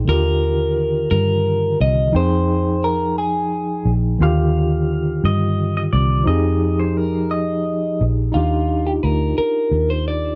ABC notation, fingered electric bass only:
X:1
M:6/8
L:1/8
Q:3/8=58
K:Eb
V:1 name="Fingered electric bass" clef=bass
E,,3 G,,2 C,, | F,,4- F,, B,,, | E,,3 G,,2 C,, | F,,4- F,, B,,, |
E,,2 D,, z E,,2 |]